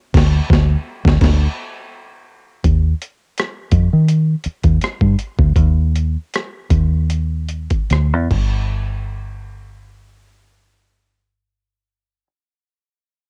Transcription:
0.14 0.39 D2 loud
0.14 kick loud
0.14 snare loud
0.14 crash medium
0.50 0.75 D2 loud
0.50 kick loud
0.50 snare loud
1.05 1.19 D2 loud
1.05 kick loud
1.05 snare loud
1.21 1.46 D2 loud
1.21 kick loud
1.21 snare loud
1.21 crash medium
2.64 2.93 D#2 medium
2.64 kick loud
2.64 closed hi-hat medium
3.02 closed hi-hat medium
3.38 cross-stick loud
3.38 closed hi-hat medium
3.72 3.88 F2 medium
3.72 kick medium
3.72 closed hi-hat medium
3.93 4.34 D#3 medium
4.08 closed hi-hat medium
4.44 muted fingered electric bass stroke soft
4.44 closed hi-hat soft
4.63 4.78 D#2 medium
4.63 kick medium
4.63 closed hi-hat soft
4.81 muted fingered electric bass stroke soft
4.81 cross-stick medium
4.81 closed hi-hat medium
5.01 5.15 G2 medium
5.01 kick medium
5.19 closed hi-hat medium
5.39 5.52 D2 medium
5.39 kick medium
5.56 6.16 D#2 medium
5.56 kick medium
5.56 closed hi-hat medium
5.96 closed hi-hat soft
6.34 cross-stick medium
6.34 closed hi-hat medium
6.70 7.67 D#2 medium
6.70 kick medium
6.70 closed hi-hat medium
7.10 closed hi-hat medium
7.49 closed hi-hat soft
7.70 kick medium
7.70 closed hi-hat soft
7.90 8.13 D2 medium
7.90 cross-stick medium
7.90 closed hi-hat medium
8.13 8.27 E2 medium
8.31 12.26 G1 medium
8.31 kick medium
8.31 crash medium

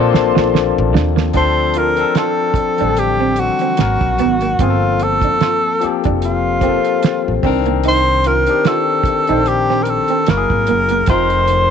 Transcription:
0.00 0.12 A#2 loud
0.00 1.22 F3 loud
0.00 1.22 A#3 medium
0.00 1.33 A#3 medium
0.00 1.22 C4 loud
0.00 1.23 D4 medium
0.00 1.23 A4 loud
0.00 1.33 A5 medium
0.00 1.34 C6 medium
0.00 1.31 D6 medium
0.13 0.33 A#1 medium
0.13 muted clean electric guitar stroke soft
0.13 snare medium
0.35 0.71 A#1 medium
0.35 0.48 F4 medium
0.35 snare medium
0.54 muted clean electric guitar stroke soft
0.54 snare loud
0.78 0.97 A1 loud
0.94 1.30 D#2 loud
0.94 1.10 D4 medium
0.94 snare loud
1.16 1.29 A#3 medium
1.16 snare medium
1.33 2.03 D2 medium
1.33 1.91 F3 medium
1.33 1.91 C4 medium
1.33 1.51 D4 medium
1.33 1.92 D4 medium
1.33 1.93 A4 medium
1.33 1.79 C5 loud
1.33 kick medium
1.33 closed hi-hat medium
1.74 1.92 F4 medium
1.74 2.17 A#4 medium
1.74 closed hi-hat medium
1.97 2.70 F3 medium
1.97 2.71 C4 medium
1.97 2.71 D4 medium
1.97 closed hi-hat soft
2.01 2.72 A4 medium
2.15 2.32 F4 medium
2.15 3.01 A4 medium
2.15 snare medium
2.15 closed hi-hat medium
2.54 muted upright bass stroke soft
2.54 kick medium
2.54 closed hi-hat medium
2.58 muted clean electric guitar stroke soft
2.77 3.48 A1 medium
2.77 2.84 E3 soft
2.77 3.78 C4 medium
2.77 3.79 D4 medium
2.77 2.93 D4 medium
2.77 closed hi-hat soft
2.82 3.80 D3 medium
2.82 3.80 G3 medium
2.97 3.41 G4 medium
2.97 closed hi-hat medium
3.21 3.33 C4 medium
3.36 4.63 F#4 medium
3.36 muted clean electric guitar stroke soft
3.36 closed hi-hat medium
3.59 3.74 C4 medium
3.59 closed hi-hat soft
3.77 3.98 G#1 loud
3.77 4.52 F#3 medium
3.77 4.53 B3 medium
3.77 4.53 C#4 medium
3.77 muted clean electric guitar stroke soft
3.77 snare loud
3.77 closed hi-hat medium
3.81 4.54 A#4 medium
4.01 4.21 A#1 medium
4.01 kick medium
4.18 4.54 G#1 medium
4.18 4.35 B3 medium
4.18 closed hi-hat medium
4.41 4.55 A#3 medium
4.41 closed hi-hat soft
4.59 5.28 G1 loud
4.59 5.71 F3 medium
4.59 5.72 A#3 medium
4.59 4.76 C4 medium
4.59 5.72 C4 medium
4.59 5.05 F4 medium
4.59 kick loud
4.59 closed hi-hat medium
4.63 4.68 G#4 medium
4.70 5.76 A4 medium
5.00 5.97 A4 loud
5.00 muted clean electric guitar stroke soft
5.00 closed hi-hat medium
5.22 5.37 D4 medium
5.22 kick medium
5.22 closed hi-hat soft
5.41 5.58 F4 medium
5.41 snare medium
5.41 closed hi-hat medium
5.80 6.55 F3 medium
5.80 6.56 A#3 medium
5.80 6.56 C4 medium
5.80 muted clean electric guitar stroke soft
5.80 muted upright bass stroke soft
5.80 closed hi-hat medium
5.84 6.57 G4 medium
6.04 6.73 F1 medium
6.04 6.18 D4 medium
6.04 kick medium
6.04 closed hi-hat soft
6.22 7.41 F4 medium
6.22 closed hi-hat medium
6.61 7.42 F3 medium
6.61 7.43 A#3 medium
6.61 6.79 C4 medium
6.61 7.42 C4 medium
6.61 7.44 A4 medium
6.61 kick medium
6.61 closed hi-hat medium
6.84 closed hi-hat soft
7.03 muted clean electric guitar stroke soft
7.03 snare loud
7.03 closed hi-hat medium
7.28 7.42 A1 medium
7.42 8.45 C2 medium
7.42 7.50 D3 medium
7.42 8.36 C4 medium
7.42 7.60 C4 medium
7.42 8.37 D4 medium
7.42 kick loud
7.42 open hi-hat soft
7.46 8.39 D#3 medium
7.46 8.38 A#4 loud
7.66 7.79 A#3 medium
7.66 closed hi-hat soft
7.83 8.01 D#4 medium
7.83 closed hi-hat medium
7.88 8.29 C5 loud
8.24 8.42 F4 medium
8.24 8.69 A#4 loud
8.24 closed hi-hat medium
8.47 9.20 D#3 medium
8.47 9.20 C4 medium
8.47 9.21 D4 medium
8.47 9.21 G4 medium
8.47 closed hi-hat medium
8.65 8.82 F4 medium
8.65 9.50 A4 medium
8.65 snare medium
8.65 closed hi-hat medium
9.04 muted upright bass stroke soft
9.04 kick medium
9.04 closed hi-hat medium
9.08 muted clean electric guitar stroke soft
9.27 9.97 A#1 medium
9.27 10.27 D#3 medium
9.27 10.28 C4 medium
9.27 10.28 D4 medium
9.27 9.42 D#4 medium
9.27 closed hi-hat soft
9.32 10.29 C5 medium
9.46 9.84 G4 medium
9.46 closed hi-hat medium
9.70 9.83 C4 medium
9.70 snare soft
9.83 9.91 A#4 medium
9.83 closed hi-hat medium
9.88 10.31 A4 medium
9.88 muted clean electric guitar stroke soft
10.08 10.23 C4 medium
10.08 closed hi-hat soft
10.26 10.47 F#1 medium
10.26 11.01 F#3 medium
10.26 11.02 A#3 medium
10.26 11.02 E4 medium
10.26 11.09 A#4 loud
10.26 muted clean electric guitar stroke soft
10.26 snare loud
10.26 closed hi-hat medium
10.31 10.36 F#4 medium
10.37 11.06 G#4 medium
10.50 10.70 G#1 medium
10.50 kick medium
10.67 11.03 F#1 medium
10.67 10.84 A#3 medium
10.67 closed hi-hat medium
10.89 11.04 A#3 medium
10.89 closed hi-hat medium
11.06 11.71 F1 loud
11.06 11.71 F3 medium
11.06 11.71 C4 medium
11.06 11.71 D#4 medium
11.06 11.25 F4 medium
11.06 11.71 C5 loud
11.06 kick loud
11.06 closed hi-hat medium
11.11 11.71 A#4 medium
11.30 closed hi-hat soft
11.48 muted clean electric guitar stroke soft
11.48 closed hi-hat medium

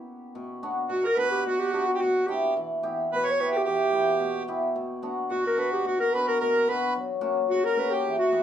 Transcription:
0.00 0.63 B3 medium
0.00 0.69 C#4 soft
0.00 2.28 E4 soft
0.00 0.69 G4 medium
0.35 0.88 B2 medium
0.63 0.76 B3 medium
0.63 0.76 D4 medium
0.63 0.76 F#4 medium
0.89 1.45 B2 medium
0.89 1.03 F#4 medium
0.89 1.08 F#4 medium
1.03 1.18 A#4 medium
1.16 1.31 B3 medium
1.16 1.31 D4 soft
1.16 1.31 F#4 medium
1.16 1.30 B4 loud
1.16 1.44 B4 loud
1.31 1.48 G4 medium
1.47 2.01 B2 medium
1.47 1.61 F#4 medium
1.47 1.91 F#4 medium
1.59 1.73 G4 medium
1.73 1.87 B3 medium
1.73 1.87 D4 medium
1.73 1.87 F#4 medium
1.73 1.86 G4 medium
1.88 1.98 F#4 medium
1.95 2.01 G4 medium
1.99 2.60 B2 medium
1.99 2.28 F#4 medium
1.99 2.26 F#4 medium
2.26 2.42 B3 medium
2.26 2.42 D4 soft
2.26 2.42 E4 medium
2.26 2.55 G4 medium
2.26 2.54 G4 medium
2.57 3.15 E3 medium
2.83 2.97 B3 medium
2.83 2.97 E4 medium
2.83 2.97 G4 medium
3.12 4.19 B2 medium
3.12 3.24 B4 medium
3.12 3.32 B4 medium
3.23 3.49 C#5 medium
3.30 3.42 C#5 medium
3.40 3.53 B3 medium
3.40 3.53 E4 medium
3.40 3.53 G4 medium
3.40 3.58 B4 medium
3.51 3.62 G4 medium
3.57 3.67 G4 medium
3.64 4.26 E3 medium
3.64 4.43 G4 medium
3.64 4.45 G4 medium
3.93 4.07 B3 medium
3.93 4.07 E4 soft
3.93 4.07 G4 medium
4.20 4.74 B2 medium
4.48 4.62 B3 medium
4.48 4.62 E4 medium
4.48 4.62 G4 medium
4.76 5.29 B2 medium
5.03 5.17 B3 medium
5.03 5.17 D4 medium
5.03 5.17 F#4 medium
5.29 5.84 B2 medium
5.29 5.85 F#4 medium
5.29 5.43 F#4 medium
5.47 5.60 A#4 medium
5.57 5.71 B3 medium
5.57 5.71 D4 medium
5.57 5.71 F#4 medium
5.57 5.72 B4 loud
5.72 5.88 G4 medium
5.85 6.40 B2 medium
5.85 5.99 F#4 medium
5.99 6.13 A#4 medium
5.99 6.14 A#4 medium
6.13 6.27 B3 medium
6.13 6.28 D4 medium
6.13 6.27 F#4 medium
6.13 6.26 B4 medium
6.27 6.38 A#4 medium
6.27 6.40 A#4 medium
6.40 7.00 B2 medium
6.40 6.68 A#4 medium
6.40 6.70 A#4 medium
6.68 6.82 B3 medium
6.68 6.82 D4 soft
6.68 6.82 F#4 medium
6.68 6.95 B4 medium
6.68 6.94 B4 medium
6.96 7.55 F#3 medium
7.21 7.36 A#3 medium
7.21 7.36 C#4 medium
7.21 7.36 F#4 medium
7.50 8.10 C#3 medium
7.50 7.66 F#4 medium
7.50 7.64 F#4 medium
7.64 7.80 A#4 medium
7.64 7.93 A#4 medium
7.77 7.91 A#3 medium
7.77 7.91 C#4 medium
7.77 7.91 F#4 medium
7.77 7.92 B4 medium
7.90 8.16 G4 medium
7.90 8.18 G4 medium
8.05 8.43 E3 medium
8.18 8.43 F#4 medium
8.32 8.43 B3 medium
8.32 8.43 E4 soft
8.32 8.43 G4 medium

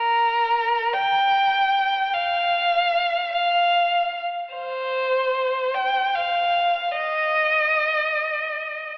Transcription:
0.00 0.95 A#4 medium
0.93 2.15 G5 medium
2.14 3.33 F5 medium
3.33 4.20 F5 medium
4.54 5.76 C5 medium
5.74 6.17 G5 medium
6.15 6.95 F5 medium
6.96 8.93 D#5 medium

